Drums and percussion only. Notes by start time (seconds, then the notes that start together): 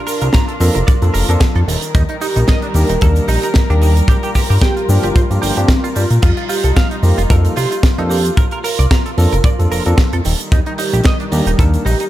0.07 open hi-hat, shaker
0.21 closed hi-hat, shaker
0.33 kick, snare, closed hi-hat, shaker
0.49 closed hi-hat
0.61 open hi-hat, shaker
0.75 closed hi-hat, shaker
0.88 kick, closed hi-hat, shaker
1.02 closed hi-hat, shaker
1.14 open hi-hat, shaker
1.29 closed hi-hat, shaker
1.40 kick, snare, closed hi-hat, shaker
1.55 closed hi-hat
1.68 open hi-hat, shaker
1.82 closed hi-hat, shaker
1.95 kick, closed hi-hat, shaker
2.09 closed hi-hat
2.21 open hi-hat, shaker
2.36 closed hi-hat, shaker
2.48 kick, snare, closed hi-hat, shaker
2.62 closed hi-hat
2.74 open hi-hat, shaker
2.89 closed hi-hat, shaker
3.01 kick, closed hi-hat, shaker
3.16 closed hi-hat, shaker
3.28 open hi-hat, shaker
3.43 closed hi-hat, shaker
3.54 kick, snare, closed hi-hat, shaker
3.70 closed hi-hat
3.82 open hi-hat, shaker
3.97 closed hi-hat, shaker
4.08 kick, closed hi-hat, shaker
4.23 closed hi-hat, shaker
4.35 kick, open hi-hat, shaker
4.50 open hi-hat, shaker
4.62 kick, snare, shaker
4.77 closed hi-hat
4.89 open hi-hat, shaker
5.03 closed hi-hat, shaker
5.16 kick, closed hi-hat, shaker
5.31 closed hi-hat, shaker
5.43 open hi-hat, shaker
5.57 closed hi-hat, shaker
5.68 kick, snare, closed hi-hat, shaker
5.84 closed hi-hat, shaker
5.96 open hi-hat, shaker
6.10 closed hi-hat, shaker
6.22 kick, closed hi-hat, crash, shaker
6.37 closed hi-hat
6.49 open hi-hat, shaker
6.64 closed hi-hat, shaker
6.76 kick, snare, closed hi-hat, shaker
6.91 closed hi-hat
7.03 open hi-hat, shaker
7.19 closed hi-hat, shaker
7.30 kick, closed hi-hat, shaker
7.45 closed hi-hat, shaker
7.56 open hi-hat, shaker
7.72 closed hi-hat, shaker
7.83 kick, snare, closed hi-hat, shaker
7.98 closed hi-hat
8.11 open hi-hat, shaker
8.25 closed hi-hat, shaker
8.37 kick, closed hi-hat, shaker
8.51 closed hi-hat
8.64 open hi-hat, shaker
8.79 closed hi-hat, shaker
8.91 kick, snare, closed hi-hat, shaker
9.06 closed hi-hat
9.18 open hi-hat, shaker
9.32 closed hi-hat, shaker
9.44 kick, closed hi-hat, shaker
9.60 closed hi-hat, shaker
9.72 open hi-hat, shaker
9.86 closed hi-hat, shaker
9.98 kick, snare, closed hi-hat, shaker
10.13 closed hi-hat
10.25 open hi-hat, shaker
10.39 closed hi-hat, shaker
10.52 kick, closed hi-hat, shaker
10.66 closed hi-hat
10.78 open hi-hat, shaker
10.93 closed hi-hat, shaker
11.04 kick, snare, closed hi-hat, shaker
11.20 closed hi-hat
11.32 open hi-hat, shaker
11.47 closed hi-hat, shaker
11.59 kick, closed hi-hat, shaker
11.74 closed hi-hat, shaker
11.86 open hi-hat, shaker
12.00 closed hi-hat, shaker